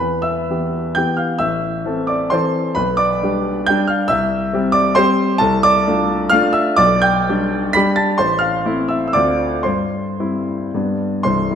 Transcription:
0.00 0.49 E2 medium
0.00 0.22 B4 medium
0.00 0.24 B5 medium
0.22 0.92 E5 medium
0.22 0.96 E6 medium
0.50 0.93 E3 soft
0.50 0.93 B3 soft
0.50 0.93 G4 medium
0.95 1.37 E3 medium
0.95 1.37 B3 medium
0.95 1.37 G4 medium
0.95 1.17 G5 medium
0.95 1.18 G6 loud
1.17 1.39 F5 medium
1.17 1.40 F6 medium
1.39 1.84 A1 medium
1.39 2.05 E5 medium
1.39 2.08 E6 loud
1.86 2.29 E3 soft
1.86 2.29 C4 medium
1.86 2.29 A4 medium
2.07 2.31 D5 medium
2.07 2.31 D6 medium
2.30 2.73 E3 medium
2.30 2.73 C4 medium
2.30 2.73 A4 medium
2.30 2.73 C5 medium
2.30 2.76 C6 medium
2.75 3.21 B1 medium
2.75 2.97 B4 medium
2.75 2.98 B5 loud
2.97 3.64 D5 medium
2.97 3.68 D6 loud
3.23 3.65 G3 medium
3.23 3.65 D4 medium
3.23 3.65 G4 medium
3.67 4.07 G3 medium
3.67 4.07 D4 medium
3.67 4.07 G4 medium
3.67 3.88 G5 medium
3.67 3.89 G6 loud
3.87 4.08 F5 medium
3.87 4.09 F6 medium
4.08 4.51 C2 medium
4.08 4.70 E5 medium
4.08 4.73 E6 loud
4.53 4.93 G3 medium
4.53 4.93 C4 medium
4.53 4.93 G4 medium
4.72 4.94 D5 medium
4.72 4.95 D6 loud
4.95 5.37 G3 medium
4.95 5.37 C4 medium
4.95 5.38 G4 medium
4.95 5.38 C5 medium
4.95 5.40 C6 loud
5.38 5.86 C2 medium
5.38 5.62 A4 medium
5.38 5.63 A5 loud
5.63 6.28 D5 medium
5.63 6.31 D6 loud
5.88 6.28 A3 medium
5.88 6.28 D4 medium
5.88 6.28 F4 medium
6.30 6.75 A3 medium
6.30 6.76 D4 medium
6.30 6.76 F4 medium
6.30 6.53 F5 loud
6.30 6.54 F6 loud
6.53 6.77 E5 medium
6.53 6.78 E6 loud
6.76 7.27 B1 medium
6.76 7.02 D5 medium
6.76 7.03 D6 loud
7.02 7.71 G5 medium
7.02 7.75 G6 loud
7.29 7.72 G3 medium
7.29 7.72 D4 medium
7.29 7.72 G4 medium
7.73 8.15 G3 medium
7.73 8.16 D4 medium
7.73 8.16 G4 medium
7.73 7.96 B5 medium
7.73 7.97 B6 loud
7.96 8.17 A5 medium
7.96 8.19 A6 loud
8.18 8.65 A1 medium
8.18 8.40 C5 medium
8.18 8.41 C6 loud
8.39 8.87 F5 medium
8.39 8.89 F6 loud
8.65 9.11 A3 medium
8.65 9.11 C4 medium
8.65 9.11 E4 medium
8.88 9.07 E5 medium
8.88 9.06 E6 medium
9.08 9.15 E6 medium
9.13 9.64 D2 medium
9.13 9.61 A3 medium
9.13 9.62 C4 medium
9.13 9.62 F4 medium
9.13 9.61 D5 medium
9.13 9.64 D6 loud
9.63 10.18 G2 medium
9.63 10.69 C5 medium
9.63 10.73 C6 medium
10.20 10.70 G3 soft
10.20 10.70 C4 soft
10.20 10.70 E4 medium
10.74 11.23 G2 medium
10.74 11.21 G3 soft
10.74 11.21 B3 soft
10.74 11.21 D4 soft
11.23 11.49 C1 medium
11.23 11.49 C2 medium
11.23 11.55 C5 medium
11.23 11.55 C6 medium
11.51 11.55 G3 soft
11.51 11.55 C4 soft
11.51 11.55 E4 medium

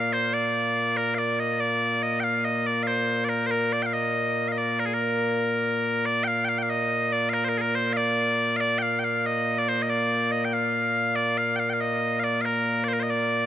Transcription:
0.00 13.46 A#2 medium
0.00 13.46 A#3 medium
0.00 0.13 F5 loud
0.13 0.34 C5 medium
0.34 0.97 D5 medium
0.97 1.15 A#4 loud
1.15 1.39 D5 medium
1.15 1.18 F5 medium
1.39 1.60 D#5 medium
1.60 2.02 D5 loud
2.02 2.20 D#5 medium
2.20 2.45 F5 loud
2.20 2.24 G5 loud
2.45 2.66 D#5 medium
2.66 2.83 D5 medium
2.83 3.25 C5 medium
2.83 2.87 F5 medium
3.25 3.29 D5 medium
3.29 3.46 A#4 medium
3.46 3.51 C5 medium
3.51 3.73 A#4 medium
3.73 3.82 D5 medium
3.82 3.93 F5 medium
3.82 3.86 G5 medium
3.93 4.48 D#5 loud
4.48 4.58 D#5 medium
4.48 4.52 F5 medium
4.58 4.79 D5 medium
4.79 4.86 A#4 medium
4.86 4.94 G#4 medium
4.94 6.05 A#4 medium
6.05 6.24 D5 loud
6.24 6.45 F5 loud
6.24 6.28 G5 loud
6.45 6.49 G5 loud
6.49 6.58 F5 loud
6.58 6.63 G5 medium
6.63 6.70 F5 medium
6.70 7.12 D#5 loud
7.12 7.29 D5 loud
7.29 7.34 F5 loud
7.34 7.44 A#4 loud
7.44 7.49 C5 medium
7.49 7.58 A#4 medium
7.58 7.61 G#4 medium
7.58 7.75 A#4 loud
7.75 7.93 C5 medium
7.93 8.56 D5 loud
7.93 7.97 F5 loud
8.56 8.60 F5 loud
8.60 8.78 D5 loud
8.78 8.99 F5 loud
8.78 8.82 G5 loud
8.99 9.04 G5 medium
9.04 9.26 F5 loud
9.26 9.58 D#5 loud
9.58 9.69 D5 medium
9.69 9.82 C5 medium
9.82 9.89 D#5 medium
9.89 10.31 D5 loud
10.31 10.45 D#5 medium
10.45 10.53 G5 medium
10.53 11.16 F5 loud
11.16 11.38 D5 loud
11.38 11.56 F5 loud
11.56 11.70 F5 medium
11.56 11.59 G5 medium
11.70 11.81 F5 medium
11.70 11.73 G5 medium
11.81 12.20 D#5 loud
12.20 12.41 D5 medium
12.20 12.24 F5 medium
12.41 12.84 A#4 loud
12.41 12.45 F5 loud
12.84 12.88 D5 medium
12.88 12.93 C5 medium
12.93 13.00 A#4 medium
13.01 13.10 D#5 medium
13.10 13.46 D5 medium

